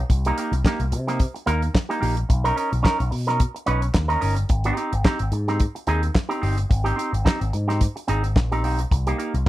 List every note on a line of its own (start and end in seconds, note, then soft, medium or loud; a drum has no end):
0.10 0.30 C2 loud
0.10 muted clean electric guitar stroke soft
0.10 kick loud
0.10 closed hi-hat medium
0.25 0.36 A#3 medium
0.25 0.38 D#4 medium
0.25 0.38 G4 medium
0.25 closed hi-hat medium
0.38 0.52 A#3 medium
0.38 0.53 D#4 medium
0.38 0.52 G4 medium
0.38 closed hi-hat medium
0.52 0.61 C2 loud
0.52 muted clean electric guitar stroke soft
0.52 closed hi-hat medium
0.65 0.84 A#3 medium
0.65 0.81 D#4 medium
0.65 0.80 G4 medium
0.65 kick loud
0.65 snare loud
0.65 clap medium
0.80 0.94 C2 medium
0.80 muted clean electric guitar stroke medium
0.80 closed hi-hat soft
0.92 1.24 C3 loud
0.92 muted clean electric guitar stroke soft
0.92 closed hi-hat medium
1.07 1.20 A#3 medium
1.07 1.20 D#4 medium
1.07 1.19 G4 medium
1.07 snare soft
1.07 closed hi-hat soft
1.19 kick loud
1.19 closed hi-hat medium
1.34 muted clean electric guitar stroke soft
1.34 closed hi-hat soft
1.46 1.68 D#2 medium
1.46 1.65 A#3 medium
1.46 1.63 D#4 medium
1.46 1.63 A#4 loud
1.46 closed hi-hat medium
1.62 muted clean electric guitar stroke soft
1.62 closed hi-hat soft
1.74 muted clean electric guitar stroke soft
1.74 kick loud
1.74 snare loud
1.74 clap medium
1.89 1.99 A#3 medium
1.89 2.00 D#4 medium
1.89 2.00 G4 medium
1.89 closed hi-hat soft
2.00 2.23 A#1 medium
2.00 2.16 A#3 medium
2.00 2.16 D#4 medium
2.00 2.15 G4 medium
2.00 open hi-hat medium
2.17 closed hi-hat medium
2.29 2.50 B1 loud
2.29 muted clean electric guitar stroke soft
2.29 kick loud
2.29 closed hi-hat medium
2.44 2.55 C#4 medium
2.44 2.55 D#4 medium
2.44 2.56 A#4 medium
2.44 closed hi-hat medium
2.56 2.72 C#4 medium
2.56 2.71 D#4 medium
2.56 2.70 A#4 medium
2.56 closed hi-hat medium
2.71 2.82 B1 loud
2.71 muted clean electric guitar stroke soft
2.71 closed hi-hat soft
2.83 3.02 C#4 medium
2.83 2.99 D#4 medium
2.83 2.98 A#4 loud
2.83 kick loud
2.83 snare loud
2.83 clap loud
2.99 3.09 B1 loud
2.99 muted clean electric guitar stroke medium
2.99 closed hi-hat soft
3.11 3.44 B2 medium
3.11 muted clean electric guitar stroke soft
3.11 open hi-hat medium
3.27 3.40 C#4 soft
3.27 3.40 D#4 medium
3.27 3.39 A#4 medium
3.27 snare soft
3.27 closed hi-hat soft
3.40 kick loud
3.40 closed hi-hat medium
3.55 muted clean electric guitar stroke soft
3.55 closed hi-hat soft
3.66 3.88 B1 medium
3.66 3.85 C#4 medium
3.66 3.82 D#4 medium
3.66 3.82 B4 medium
3.66 closed hi-hat medium
3.82 muted clean electric guitar stroke soft
3.82 closed hi-hat soft
3.94 4.15 D#2 loud
3.94 muted clean electric guitar stroke soft
3.94 kick loud
3.94 snare loud
3.94 clap loud
4.08 4.19 C#4 medium
4.08 4.20 D#4 medium
4.08 4.20 A#4 medium
4.08 closed hi-hat soft
4.21 4.43 G1 medium
4.21 4.37 C#4 medium
4.21 4.35 D#4 medium
4.21 4.34 A#4 medium
4.21 open hi-hat medium
4.36 muted clean electric guitar stroke soft
4.36 closed hi-hat medium
4.49 4.70 G#1 loud
4.49 muted clean electric guitar stroke soft
4.49 kick loud
4.49 closed hi-hat medium
4.64 4.76 C4 medium
4.64 4.77 D#4 medium
4.64 4.77 G4 medium
4.64 closed hi-hat medium
4.77 4.92 C4 medium
4.77 4.92 D#4 medium
4.77 4.91 G4 medium
4.77 closed hi-hat medium
4.93 5.02 G#1 loud
4.93 muted clean electric guitar stroke soft
4.93 closed hi-hat medium
5.05 5.23 C4 loud
5.05 5.20 D#4 loud
5.05 5.19 G4 loud
5.05 kick loud
5.05 snare loud
5.05 clap loud
5.19 5.29 G#1 loud
5.19 muted clean electric guitar stroke soft
5.19 closed hi-hat medium
5.32 5.64 G#2 loud
5.32 muted clean electric guitar stroke soft
5.32 closed hi-hat medium
5.48 5.60 C4 medium
5.48 5.60 D#4 medium
5.48 5.60 G4 medium
5.48 snare soft
5.48 closed hi-hat soft
5.60 kick loud
5.60 closed hi-hat medium
5.75 muted clean electric guitar stroke soft
5.75 closed hi-hat soft
5.87 6.08 D#2 loud
5.87 6.06 C4 medium
5.87 6.03 D#4 medium
5.87 6.02 G#4 loud
5.87 closed hi-hat medium
6.03 muted clean electric guitar stroke medium
6.03 closed hi-hat soft
6.14 muted clean electric guitar stroke medium
6.14 kick loud
6.14 snare loud
6.14 clap loud
6.29 6.40 C4 medium
6.29 6.41 D#4 medium
6.29 6.42 G4 medium
6.29 closed hi-hat soft
6.42 6.63 G1 medium
6.42 6.57 C4 medium
6.42 6.57 D#4 medium
6.42 6.56 G4 medium
6.42 open hi-hat medium
6.57 muted clean electric guitar stroke soft
6.57 closed hi-hat medium
6.70 6.91 G#1 loud
6.70 muted clean electric guitar stroke soft
6.70 kick loud
6.70 closed hi-hat medium
6.84 6.95 C4 medium
6.84 6.96 D#4 medium
6.84 6.97 G4 medium
6.84 closed hi-hat medium
6.96 7.12 C4 medium
6.96 7.12 D#4 medium
6.96 7.11 G4 medium
6.96 closed hi-hat medium
7.13 7.22 G#1 loud
7.13 muted clean electric guitar stroke soft
7.13 closed hi-hat medium
7.25 7.44 C4 medium
7.25 7.40 D#4 medium
7.25 7.39 G4 medium
7.25 kick loud
7.25 snare loud
7.25 clap loud
7.40 7.50 G#1 medium
7.40 muted clean electric guitar stroke soft
7.40 closed hi-hat medium
7.53 7.86 G#2 medium
7.53 muted clean electric guitar stroke soft
7.53 closed hi-hat medium
7.68 7.81 C4 medium
7.68 7.80 D#4 medium
7.68 7.80 G4 medium
7.68 snare soft
7.68 closed hi-hat soft
7.81 kick loud
7.81 closed hi-hat medium
7.96 muted clean electric guitar stroke soft
7.96 closed hi-hat medium
8.08 8.36 G#1 medium
8.08 8.27 C4 medium
8.08 8.23 D#4 loud
8.08 8.23 G#4 loud
8.08 closed hi-hat medium
8.24 muted clean electric guitar stroke medium
8.24 closed hi-hat medium
8.36 8.63 A#1 medium
8.36 muted clean electric guitar stroke soft
8.36 kick loud
8.36 snare loud
8.36 clap medium
8.52 8.63 C4 medium
8.52 8.63 D#4 medium
8.52 8.64 G4 medium
8.52 closed hi-hat soft
8.63 8.84 B1 medium
8.63 8.79 C4 medium
8.63 8.79 D#4 medium
8.63 8.79 G4 medium
8.63 open hi-hat medium
8.79 muted clean electric guitar stroke medium
8.79 closed hi-hat medium
8.91 9.12 C2 loud
8.91 muted clean electric guitar stroke soft
8.91 kick loud
8.91 closed hi-hat medium
9.07 9.17 A#3 medium
9.07 9.18 D#4 medium
9.07 9.18 G4 medium
9.07 closed hi-hat medium
9.18 9.34 A#3 medium
9.18 9.34 D#4 medium
9.18 9.33 G4 medium
9.18 closed hi-hat medium
9.34 9.43 C2 loud
9.34 muted clean electric guitar stroke soft
9.34 closed hi-hat medium